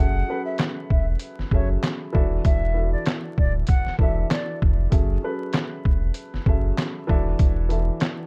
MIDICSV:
0, 0, Header, 1, 5, 480
1, 0, Start_track
1, 0, Key_signature, 3, "minor"
1, 0, Tempo, 618557
1, 1898, Time_signature, 4, 2, 24, 8
1, 6414, End_track
2, 0, Start_track
2, 0, Title_t, "Flute"
2, 0, Program_c, 0, 73
2, 0, Note_on_c, 0, 78, 100
2, 330, Note_off_c, 0, 78, 0
2, 351, Note_on_c, 0, 76, 72
2, 446, Note_off_c, 0, 76, 0
2, 702, Note_on_c, 0, 76, 75
2, 822, Note_off_c, 0, 76, 0
2, 1193, Note_on_c, 0, 73, 77
2, 1308, Note_off_c, 0, 73, 0
2, 1903, Note_on_c, 0, 76, 106
2, 2254, Note_off_c, 0, 76, 0
2, 2271, Note_on_c, 0, 74, 74
2, 2366, Note_off_c, 0, 74, 0
2, 2625, Note_on_c, 0, 74, 86
2, 2744, Note_off_c, 0, 74, 0
2, 2857, Note_on_c, 0, 78, 82
2, 3073, Note_off_c, 0, 78, 0
2, 3110, Note_on_c, 0, 76, 81
2, 3321, Note_off_c, 0, 76, 0
2, 3348, Note_on_c, 0, 74, 72
2, 3559, Note_off_c, 0, 74, 0
2, 6414, End_track
3, 0, Start_track
3, 0, Title_t, "Grand piano"
3, 0, Program_c, 1, 0
3, 0, Note_on_c, 1, 54, 73
3, 0, Note_on_c, 1, 61, 62
3, 0, Note_on_c, 1, 68, 69
3, 0, Note_on_c, 1, 69, 67
3, 0, Note_on_c, 1, 76, 81
3, 133, Control_c, 1, 64, 127
3, 158, Note_off_c, 1, 54, 0
3, 160, Note_off_c, 1, 61, 0
3, 162, Note_off_c, 1, 68, 0
3, 165, Note_off_c, 1, 69, 0
3, 167, Note_off_c, 1, 76, 0
3, 215, Note_on_c, 1, 54, 69
3, 220, Note_on_c, 1, 61, 62
3, 224, Note_on_c, 1, 68, 62
3, 228, Note_on_c, 1, 69, 61
3, 233, Note_on_c, 1, 71, 80
3, 927, Note_off_c, 1, 54, 0
3, 929, Note_off_c, 1, 61, 0
3, 931, Note_off_c, 1, 68, 0
3, 933, Note_off_c, 1, 69, 0
3, 936, Note_off_c, 1, 71, 0
3, 1179, Note_on_c, 1, 54, 75
3, 1184, Note_on_c, 1, 61, 66
3, 1189, Note_on_c, 1, 68, 60
3, 1193, Note_on_c, 1, 69, 66
3, 1197, Note_on_c, 1, 76, 91
3, 1649, Note_on_c, 1, 52, 92
3, 1651, Note_off_c, 1, 69, 0
3, 1653, Note_on_c, 1, 62, 83
3, 1655, Note_off_c, 1, 76, 0
3, 1658, Note_off_c, 1, 54, 0
3, 1658, Note_on_c, 1, 66, 91
3, 1661, Note_off_c, 1, 61, 0
3, 1663, Note_off_c, 1, 68, 0
3, 1663, Note_on_c, 1, 69, 87
3, 1666, Note_on_c, 1, 76, 98
3, 1668, Control_c, 1, 64, 0
3, 1817, Control_c, 1, 64, 127
3, 2050, Note_off_c, 1, 52, 0
3, 2052, Note_off_c, 1, 62, 0
3, 2055, Note_off_c, 1, 66, 0
3, 2057, Note_off_c, 1, 69, 0
3, 2059, Note_off_c, 1, 76, 0
3, 2127, Note_on_c, 1, 52, 72
3, 2132, Note_on_c, 1, 62, 60
3, 2136, Note_on_c, 1, 66, 66
3, 2140, Note_on_c, 1, 69, 60
3, 2144, Note_on_c, 1, 76, 71
3, 2843, Note_off_c, 1, 52, 0
3, 2845, Note_off_c, 1, 62, 0
3, 2847, Note_off_c, 1, 66, 0
3, 2849, Note_off_c, 1, 69, 0
3, 2851, Note_off_c, 1, 76, 0
3, 3094, Note_on_c, 1, 52, 74
3, 3099, Note_on_c, 1, 62, 67
3, 3104, Note_on_c, 1, 66, 64
3, 3108, Note_on_c, 1, 69, 72
3, 3112, Note_on_c, 1, 76, 83
3, 3635, Note_off_c, 1, 52, 0
3, 3637, Note_off_c, 1, 62, 0
3, 3639, Note_off_c, 1, 66, 0
3, 3641, Note_off_c, 1, 69, 0
3, 3643, Note_off_c, 1, 76, 0
3, 3803, Note_on_c, 1, 54, 77
3, 3808, Note_on_c, 1, 61, 64
3, 3812, Note_on_c, 1, 68, 68
3, 3817, Note_on_c, 1, 69, 68
3, 3821, Note_on_c, 1, 76, 81
3, 3827, Control_c, 1, 64, 0
3, 3960, Control_c, 1, 64, 127
3, 3996, Note_off_c, 1, 54, 0
3, 3999, Note_off_c, 1, 61, 0
3, 4000, Note_off_c, 1, 68, 0
3, 4003, Note_off_c, 1, 69, 0
3, 4005, Note_off_c, 1, 76, 0
3, 4052, Note_on_c, 1, 54, 73
3, 4056, Note_on_c, 1, 61, 64
3, 4061, Note_on_c, 1, 68, 61
3, 4065, Note_on_c, 1, 69, 63
3, 4070, Note_on_c, 1, 71, 78
3, 4765, Note_off_c, 1, 54, 0
3, 4767, Note_off_c, 1, 61, 0
3, 4770, Note_off_c, 1, 68, 0
3, 4772, Note_off_c, 1, 69, 0
3, 4774, Note_off_c, 1, 71, 0
3, 5016, Note_on_c, 1, 54, 73
3, 5020, Note_on_c, 1, 61, 66
3, 5025, Note_on_c, 1, 68, 60
3, 5028, Note_on_c, 1, 69, 69
3, 5034, Note_on_c, 1, 76, 89
3, 5488, Note_on_c, 1, 52, 92
3, 5490, Note_off_c, 1, 69, 0
3, 5492, Note_on_c, 1, 62, 88
3, 5494, Note_off_c, 1, 76, 0
3, 5497, Note_off_c, 1, 54, 0
3, 5497, Note_on_c, 1, 66, 90
3, 5499, Note_off_c, 1, 61, 0
3, 5501, Note_off_c, 1, 68, 0
3, 5502, Note_on_c, 1, 69, 87
3, 5505, Note_on_c, 1, 76, 96
3, 5509, Control_c, 1, 64, 0
3, 5624, Control_c, 1, 64, 127
3, 5890, Note_off_c, 1, 52, 0
3, 5892, Note_off_c, 1, 62, 0
3, 5894, Note_off_c, 1, 66, 0
3, 5897, Note_off_c, 1, 69, 0
3, 5899, Note_off_c, 1, 76, 0
3, 5967, Note_on_c, 1, 52, 75
3, 5971, Note_on_c, 1, 62, 60
3, 5976, Note_on_c, 1, 66, 63
3, 5980, Note_on_c, 1, 69, 62
3, 5985, Note_on_c, 1, 76, 74
3, 6414, Note_off_c, 1, 52, 0
3, 6414, Note_off_c, 1, 62, 0
3, 6414, Note_off_c, 1, 66, 0
3, 6414, Note_off_c, 1, 69, 0
3, 6414, Note_off_c, 1, 76, 0
3, 6414, End_track
4, 0, Start_track
4, 0, Title_t, "Sub bass"
4, 0, Program_c, 2, 38
4, 0, Note_on_c, 2, 30, 109
4, 174, Note_off_c, 2, 30, 0
4, 702, Note_on_c, 2, 28, 93
4, 895, Note_off_c, 2, 28, 0
4, 1076, Note_on_c, 2, 30, 49
4, 1117, Note_off_c, 2, 30, 0
4, 1175, Note_on_c, 2, 30, 90
4, 1371, Note_off_c, 2, 30, 0
4, 1667, Note_on_c, 2, 28, 96
4, 1858, Note_off_c, 2, 28, 0
4, 1901, Note_on_c, 2, 28, 108
4, 2289, Note_off_c, 2, 28, 0
4, 2622, Note_on_c, 2, 26, 99
4, 2815, Note_off_c, 2, 26, 0
4, 2997, Note_on_c, 2, 28, 49
4, 3038, Note_off_c, 2, 28, 0
4, 3095, Note_on_c, 2, 28, 92
4, 3291, Note_off_c, 2, 28, 0
4, 3587, Note_on_c, 2, 29, 98
4, 3778, Note_off_c, 2, 29, 0
4, 3820, Note_on_c, 2, 30, 107
4, 4014, Note_off_c, 2, 30, 0
4, 4541, Note_on_c, 2, 28, 93
4, 4735, Note_off_c, 2, 28, 0
4, 4917, Note_on_c, 2, 30, 51
4, 4957, Note_off_c, 2, 30, 0
4, 5015, Note_on_c, 2, 30, 88
4, 5211, Note_off_c, 2, 30, 0
4, 5506, Note_on_c, 2, 28, 100
4, 5698, Note_off_c, 2, 28, 0
4, 5739, Note_on_c, 2, 28, 104
4, 6129, Note_off_c, 2, 28, 0
4, 6414, End_track
5, 0, Start_track
5, 0, Title_t, "Drums"
5, 451, Note_on_c, 9, 42, 71
5, 461, Note_on_c, 9, 38, 113
5, 461, Note_on_c, 9, 39, 92
5, 528, Note_off_c, 9, 42, 0
5, 539, Note_off_c, 9, 38, 0
5, 539, Note_off_c, 9, 39, 0
5, 701, Note_on_c, 9, 36, 87
5, 779, Note_off_c, 9, 36, 0
5, 927, Note_on_c, 9, 42, 94
5, 1005, Note_off_c, 9, 42, 0
5, 1080, Note_on_c, 9, 38, 38
5, 1157, Note_off_c, 9, 38, 0
5, 1175, Note_on_c, 9, 36, 92
5, 1252, Note_off_c, 9, 36, 0
5, 1423, Note_on_c, 9, 38, 106
5, 1423, Note_on_c, 9, 39, 89
5, 1423, Note_on_c, 9, 42, 84
5, 1501, Note_off_c, 9, 38, 0
5, 1501, Note_off_c, 9, 39, 0
5, 1501, Note_off_c, 9, 42, 0
5, 1666, Note_on_c, 9, 36, 99
5, 1744, Note_off_c, 9, 36, 0
5, 1898, Note_on_c, 9, 42, 79
5, 1899, Note_on_c, 9, 36, 123
5, 1976, Note_off_c, 9, 42, 0
5, 1977, Note_off_c, 9, 36, 0
5, 2371, Note_on_c, 9, 42, 69
5, 2382, Note_on_c, 9, 38, 117
5, 2382, Note_on_c, 9, 39, 92
5, 2449, Note_off_c, 9, 42, 0
5, 2460, Note_off_c, 9, 38, 0
5, 2460, Note_off_c, 9, 39, 0
5, 2621, Note_on_c, 9, 36, 88
5, 2699, Note_off_c, 9, 36, 0
5, 2846, Note_on_c, 9, 42, 97
5, 2861, Note_on_c, 9, 36, 99
5, 2924, Note_off_c, 9, 42, 0
5, 2938, Note_off_c, 9, 36, 0
5, 2999, Note_on_c, 9, 38, 37
5, 3076, Note_off_c, 9, 38, 0
5, 3094, Note_on_c, 9, 36, 92
5, 3172, Note_off_c, 9, 36, 0
5, 3343, Note_on_c, 9, 38, 108
5, 3343, Note_on_c, 9, 39, 87
5, 3343, Note_on_c, 9, 42, 86
5, 3421, Note_off_c, 9, 38, 0
5, 3421, Note_off_c, 9, 39, 0
5, 3421, Note_off_c, 9, 42, 0
5, 3586, Note_on_c, 9, 36, 97
5, 3663, Note_off_c, 9, 36, 0
5, 3817, Note_on_c, 9, 42, 82
5, 3819, Note_on_c, 9, 36, 120
5, 3895, Note_off_c, 9, 42, 0
5, 3896, Note_off_c, 9, 36, 0
5, 4289, Note_on_c, 9, 42, 71
5, 4300, Note_on_c, 9, 38, 118
5, 4300, Note_on_c, 9, 39, 94
5, 4367, Note_off_c, 9, 42, 0
5, 4377, Note_off_c, 9, 38, 0
5, 4377, Note_off_c, 9, 39, 0
5, 4541, Note_on_c, 9, 36, 91
5, 4618, Note_off_c, 9, 36, 0
5, 4766, Note_on_c, 9, 42, 97
5, 4844, Note_off_c, 9, 42, 0
5, 4918, Note_on_c, 9, 38, 37
5, 4996, Note_off_c, 9, 38, 0
5, 5014, Note_on_c, 9, 36, 96
5, 5092, Note_off_c, 9, 36, 0
5, 5262, Note_on_c, 9, 42, 86
5, 5263, Note_on_c, 9, 38, 109
5, 5263, Note_on_c, 9, 39, 86
5, 5340, Note_off_c, 9, 38, 0
5, 5340, Note_off_c, 9, 39, 0
5, 5340, Note_off_c, 9, 42, 0
5, 5505, Note_on_c, 9, 36, 95
5, 5583, Note_off_c, 9, 36, 0
5, 5736, Note_on_c, 9, 42, 81
5, 5738, Note_on_c, 9, 36, 121
5, 5813, Note_off_c, 9, 42, 0
5, 5816, Note_off_c, 9, 36, 0
5, 5977, Note_on_c, 9, 42, 56
5, 6054, Note_off_c, 9, 42, 0
5, 6210, Note_on_c, 9, 42, 70
5, 6221, Note_on_c, 9, 38, 120
5, 6221, Note_on_c, 9, 39, 93
5, 6288, Note_off_c, 9, 42, 0
5, 6298, Note_off_c, 9, 38, 0
5, 6298, Note_off_c, 9, 39, 0
5, 6414, End_track
0, 0, End_of_file